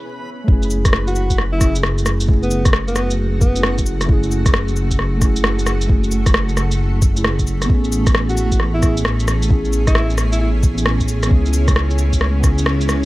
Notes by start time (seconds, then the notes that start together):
0.44 A3 C#4
0.48 F#1 E4 G#4, kick
0.63 shaker
0.70 cabasa
0.85 F#4, kick, cross-stick, shaker
0.93 cross-stick
1.07 F#4, shaker
1.16 cabasa
1.30 kick, shaker
1.38 cross-stick
1.53 E4
1.57 A3 C#4
1.61 E4 G#4, kick, cross-stick, cabasa
1.75 shaker
1.83 cross-stick
1.98 shaker
2.06 cross-stick, cabasa
2.20 shaker
2.26 A3 C#4 E4, kick
2.31 G#4
2.43 B3, shaker
2.51 cabasa
2.65 kick, cross-stick, shaker
2.73 cross-stick
2.88 B3, shaker
2.96 cross-stick, cabasa
3.11 shaker
3.41 B3, kick, cabasa
3.52 A3 C#4, shaker
3.57 E4 G#4
3.63 cross-stick
3.78 kick, shaker
3.86 cabasa
4.01 cross-stick, shaker
4.05 A3 C#4, kick
4.10 E4 G#4
4.23 shaker
4.31 cabasa
4.46 kick, cross-stick, shaker
4.54 cross-stick
4.68 shaker
4.76 cabasa
4.91 kick, shaker
4.99 cross-stick
5.17 A3 C#4
5.21 E4 G#4, kick, cross-stick, cabasa
5.36 shaker
5.44 cross-stick
5.59 shaker
5.66 cross-stick, cabasa
5.81 shaker
5.87 A3 C#4 E4, kick
5.91 G#4
6.04 shaker
6.12 cabasa
6.26 kick, cross-stick, shaker
6.34 cross-stick
6.49 shaker
6.57 cross-stick, cabasa
6.71 shaker
7.02 kick, cabasa
7.12 A3 C#4
7.17 E4 G#4, shaker
7.24 cross-stick
7.39 kick, shaker
7.47 cabasa
7.62 B3, cross-stick, shaker
7.68 A1 C#4 E4, kick
7.74 G#4
7.78 C#4
7.84 shaker
7.89 E4 G#4, cabasa
8.04 C#5, kick, cross-stick, shaker
8.15 cross-stick
8.29 F#4, shaker
8.37 cabasa
8.52 kick, shaker
8.60 cross-stick
8.74 E4
8.79 B3 C#4, cross-stick, cabasa
8.83 E4 G#4, kick
8.97 shaker
9.05 cross-stick
9.20 shaker
9.28 cross-stick, cabasa
9.42 shaker
9.48 B3 C#4 E4 G#4, kick
9.65 shaker
9.73 cabasa
9.87 E4, kick, cross-stick, shaker
9.95 cross-stick
10.10 shaker
10.18 cross-stick, cabasa
10.32 E4, shaker
10.41 E4
10.63 kick, cabasa
10.74 B3 C#4
10.78 E4 G#4, shaker
10.86 cross-stick
11.00 kick, shaker
11.08 cabasa
11.23 B3, cross-stick, shaker
11.29 C#2 B3 C#4 E4, kick
11.35 G#4
11.46 shaker
11.53 cabasa
11.68 kick, cross-stick, shaker
11.76 cross-stick
11.91 shaker
11.98 cabasa
12.13 kick, shaker
12.21 cross-stick
12.40 B3 C#4
12.44 E4, kick, cross-stick, cabasa
12.48 G#4
12.58 shaker
12.66 cross-stick
12.81 shaker
12.89 cross-stick, cabasa